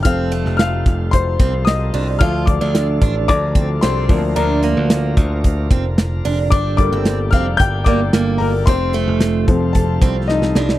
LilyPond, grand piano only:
<<
  \new Staff \with { instrumentName = "Grand piano" } { \time 4/4 \key f \mixolydian \tempo 4 = 111 <f'' f'''>4 <f'' f'''>4 <c'' c'''>4 <ees'' ees'''>4 | <f'' f'''>8 <d'' d'''>4 r8 <d'' d'''>4 <c'' c'''>4 | <bes' bes''>2 r2 | <d'' d'''>8 <d'' d'''>4 <f'' f'''>8 <g'' g'''>8 <d'' d'''>4 <bes' bes''>8 |
<c'' c'''>2 <a' a''>4 <ees' ees''>4 | }
  \new Staff \with { instrumentName = "Grand piano" } { \time 4/4 \key f \mixolydian <f a c'>1 | <f a d'>2 <f a d'>8 r4 <f bes d'>8~ | <f bes d'>4 r2. | r8 <g a bes>4. r2 |
r4. <f a c'>4. r4 | }
>>